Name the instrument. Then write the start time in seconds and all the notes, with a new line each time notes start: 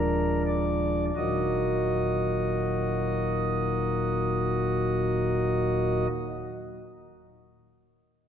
pipe organ
Already playing: D#1 D#2 F3 G#3 D4 A#4
0.47 D5
1.16 D#1 D#2 A#2 F#3 A#3 D#4 F#4 D#5